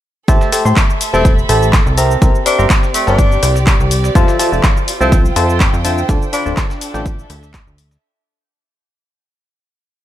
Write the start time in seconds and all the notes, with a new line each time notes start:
0.28 A1 A3 G4 A4 C5 E5 A5, kick, closed hi-hat, shaker
0.40 E5, snare, shaker
0.52 A3 G4 A4 C5 E5 A5, snare, closed hi-hat, open hi-hat, shaker
0.65 A2 A3 G4 A4 C5 E5 C6, shaker
0.76 kick, snare, clap, closed hi-hat, shaker
0.90 shaker
1.01 B5, closed hi-hat, open hi-hat, shaker
1.14 E1 A3 C4 G4 A4 C5 E5 A5, shaker
1.25 kick, closed hi-hat, shaker
1.38 shaker
1.49 A1 A3 G4 A4 C5 E5 A5, cross-stick, closed hi-hat, open hi-hat, shaker
1.63 shaker
1.73 kick, snare, clap, closed hi-hat, shaker
1.86 C2, shaker
1.98 C4 G4 A#4 C5 E5 A#5, closed hi-hat, open hi-hat, shaker
2.11 shaker
2.22 C2 C4 G4 A#4 C5 E5 A#5, kick, closed hi-hat, shaker
2.26 G4
2.35 shaker
2.46 C4 D4 G4 A#4 C5 E5 C6, closed hi-hat, open hi-hat, shaker
2.59 G1 C4 G4 A#4 C5 D5 E5 A#5, shaker
2.70 kick, snare, clap, closed hi-hat, shaker
2.83 snare, shaker
2.94 A3, closed hi-hat, open hi-hat, shaker
3.07 G1 C4 D4 G4 A#4 C5 E5 A5, snare, shaker
3.19 kick, closed hi-hat, shaker
3.32 shaker
3.43 C2, cross-stick, closed hi-hat, open hi-hat, shaker
3.56 snare, shaker
3.67 kick, snare, clap, closed hi-hat, shaker
3.80 C2, shaker
3.91 closed hi-hat, open hi-hat, shaker
4.04 snare, shaker
4.15 F2 F3 F4 A4 C5 E5 A5, kick, closed hi-hat, shaker
4.28 snare, shaker
4.39 F3 F4 A4 C5 E5 A5, snare, closed hi-hat, open hi-hat, shaker
4.52 F1 F3 F4 A4 C5 E5 A5, shaker
4.59 C5
4.63 kick, snare, clap, closed hi-hat, shaker
4.77 shaker
4.88 closed hi-hat, open hi-hat, shaker
5.01 C2 F3 C4 F4 A4 C5 E5 G5 A5, shaker
5.12 kick, closed hi-hat, shaker
5.25 shaker
5.36 F2 F3 F4 A4 C5 E5 A5, cross-stick, closed hi-hat, open hi-hat, shaker
5.50 shaker
5.60 kick, snare, clap, closed hi-hat, shaker
5.73 F2, shaker
5.85 D3 F4 A4 C5 E5 A5, closed hi-hat, open hi-hat, shaker
5.98 shaker
6.09 D2 D3 D4 F4 A4 C5 D5 A5, kick, closed hi-hat, shaker
6.22 shaker
6.33 D3 D4 F4 A4 C5 D5 B5, closed hi-hat, open hi-hat, shaker
6.46 D1 D3 F4 A4 C5 D5 A5, shaker
6.54 A4, kick, snare, clap, closed hi-hat, shaker
6.70 snare, shaker
6.81 closed hi-hat, open hi-hat, shaker
6.94 A1 D3 F4 A4 C5 D5 E5 G5, snare, shaker
7.06 kick, closed hi-hat, shaker
7.19 shaker
7.30 D2, cross-stick, closed hi-hat, open hi-hat, shaker
7.43 snare, shaker
7.54 kick, snare, clap, closed hi-hat, shaker
7.67 D2, shaker
7.78 closed hi-hat, open hi-hat, shaker
7.91 snare, shaker